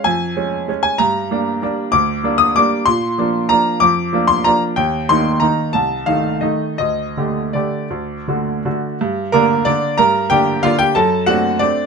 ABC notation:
X:1
M:3/4
L:1/8
Q:1/4=186
K:Db
V:1 name="Grand piano"
a4- a a | [K:Gm] b6 | d'3 e' d'2 | c'4 b2 |
d'3 c' b z | g2 c'2 b2 | a2 f2 e2 | e4 d2- |
d4- d z | z2 [B,B]2 [Dd]2 | [Bb]2 [Gg]2 [Ff] [Gg] | [Aa]2 [^F^f]2 [Dd]2 |]
V:2 name="Grand piano"
F,,2 [A,D]2 [A,D]2 | [K:Gm] G,,2 [G,B,D]2 [G,B,D]2 | D,,2 [G,B,D]2 [G,B,D]2 | B,,2 [F,B,D]2 [F,B,D]2 |
F,,2 [F,B,D]2 [F,B,D]2 | E,,2 [E,B,E]2 [E,B,E]2 | C,,2 [E,A,E]2 [E,A,E]2 | D,,2 [D,A,G]2 [D,A,G]2 |
D,,2 [D,A,^F]2 [D,A,F]2 | G,,2 [D,D]2 [D,B,]2 | G,,2 [D,B,D]2 [D,B,D]2 | ^F,,2 [A,CD]2 [A,C]2 |]